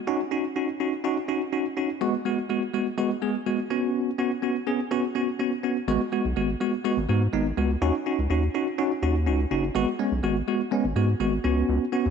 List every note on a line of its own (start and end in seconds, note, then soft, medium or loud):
0.07 0.19 C#4 loud
0.07 0.20 D#4 loud
0.07 0.20 F#4 loud
0.31 0.44 C#4 medium
0.31 0.44 D#4 medium
0.31 0.44 F#4 medium
0.56 0.68 C#4 medium
0.56 0.68 D#4 medium
0.56 0.68 F#4 medium
0.80 0.92 C#4 medium
0.80 0.92 D#4 medium
0.80 0.92 F#4 medium
1.04 1.16 C#4 loud
1.04 1.16 D#4 medium
1.04 1.16 F#4 loud
1.28 1.40 C#4 medium
1.28 1.41 D#4 medium
1.28 1.41 F#4 medium
1.52 1.65 C#4 medium
1.52 1.65 D#4 medium
1.52 1.65 F#4 medium
1.77 1.89 C#4 medium
1.77 1.89 D#4 medium
1.77 1.89 F#4 medium
2.01 2.13 G#3 loud
2.01 2.13 B3 loud
2.01 2.13 F#4 loud
2.25 2.37 G#3 medium
2.25 2.37 B3 medium
2.25 2.38 F#4 medium
2.49 2.62 G#3 medium
2.49 2.62 B3 medium
2.49 2.62 F#4 medium
2.74 2.86 G#3 medium
2.74 2.86 B3 medium
2.74 2.86 F#4 medium
2.98 3.10 G#3 loud
2.98 3.10 B3 loud
2.98 3.10 F#4 loud
3.22 3.34 G#3 medium
3.22 3.34 B3 medium
3.22 3.34 G#4 medium
3.46 3.58 G#3 medium
3.46 3.58 B3 medium
3.46 3.58 F#4 medium
3.70 4.10 B3 medium
3.70 4.10 C#4 medium
3.70 4.10 F#4 medium
4.18 4.31 B3 medium
4.18 4.31 C#4 medium
4.18 4.31 F#4 medium
4.42 4.55 B3 medium
4.42 4.55 C#4 medium
4.42 4.55 F#4 medium
4.67 4.79 B3 medium
4.67 4.79 C#4 medium
4.67 4.79 G#4 medium
4.91 5.03 B3 loud
4.91 5.03 C#4 medium
4.91 5.03 F#4 loud
5.15 5.27 B3 medium
5.15 5.28 C#4 medium
5.15 5.28 F#4 medium
5.39 5.52 B3 medium
5.39 5.52 C#4 medium
5.39 5.52 F#4 medium
5.64 5.76 B3 medium
5.64 5.76 C#4 medium
5.64 5.76 F#4 medium
5.88 5.98 G#1 loud
5.88 6.00 G#3 loud
5.88 6.00 B3 loud
5.88 6.00 F#4 loud
6.12 6.24 G#3 medium
6.12 6.24 B3 medium
6.12 6.25 F#4 medium
6.25 6.34 B1 medium
6.36 6.55 G#1 loud
6.36 6.48 G#3 medium
6.36 6.49 B3 medium
6.36 6.49 F#4 medium
6.60 6.73 G#3 medium
6.60 6.73 B3 medium
6.60 6.73 F#4 medium
6.85 6.97 G#3 loud
6.85 6.97 B3 medium
6.85 6.97 F#4 loud
6.97 7.06 G#1 loud
7.09 7.28 G#2 medium
7.09 7.21 G#3 medium
7.09 7.21 B3 medium
7.09 7.21 F#4 medium
7.33 7.52 G#1 medium
7.33 7.45 G#3 medium
7.33 7.45 B3 medium
7.33 7.45 D#4 loud
7.57 7.76 C#2 medium
7.57 7.70 G#3 medium
7.57 7.70 B3 medium
7.57 7.70 F#4 medium
7.82 7.92 D#2 loud
7.82 7.94 C#4 loud
7.82 7.94 D#4 loud
7.82 7.94 F#4 loud
8.06 8.18 C#4 medium
8.06 8.18 D#4 medium
8.06 8.18 F#4 medium
8.19 8.27 C#2 medium
8.30 8.49 D#2 loud
8.30 8.42 C#4 medium
8.30 8.42 D#4 medium
8.30 8.42 F#4 medium
8.54 8.66 C#4 medium
8.54 8.67 D#4 medium
8.54 8.67 F#4 medium
8.78 8.90 C#4 loud
8.78 8.91 D#4 medium
8.78 8.91 F#4 loud
9.02 9.28 D#2 medium
9.02 9.15 C#4 medium
9.02 9.15 D#4 medium
9.02 9.15 F#4 medium
9.27 9.45 C#2 medium
9.27 9.39 C#4 medium
9.27 9.39 D#4 medium
9.27 9.39 F#4 medium
9.51 9.70 F#1 medium
9.51 9.63 C#4 medium
9.51 9.63 D#4 medium
9.51 9.63 F#4 medium
9.75 9.85 G#1 loud
9.75 9.87 G#3 loud
9.75 9.87 B3 loud
9.75 9.87 F#4 loud
9.99 10.11 G#3 medium
9.99 10.11 B3 medium
9.99 10.12 C#4 medium
10.12 10.21 B1 medium
10.23 10.42 G#1 loud
10.23 10.35 G#3 medium
10.23 10.36 B3 medium
10.23 10.36 F#4 medium
10.48 10.60 G#3 medium
10.48 10.60 B3 medium
10.48 10.60 F#4 loud
10.72 10.84 G#3 loud
10.72 10.84 B3 loud
10.72 10.84 C#4 loud
10.84 10.93 G#1 medium
10.96 11.15 G#2 medium
10.96 11.08 G#3 medium
10.96 11.08 B3 medium
10.96 11.08 F#4 medium
11.20 11.39 G#1 medium
11.20 11.32 G#3 medium
11.20 11.32 B3 medium
11.20 11.33 F#4 loud
11.44 11.63 C#2 loud
11.44 11.84 B3 medium
11.44 11.84 C#4 medium
11.44 11.84 F#4 medium
11.69 11.79 C#2 loud
11.92 12.05 B3 medium
11.92 12.05 C#4 medium
11.92 12.05 F#4 medium
12.06 12.10 D#2 medium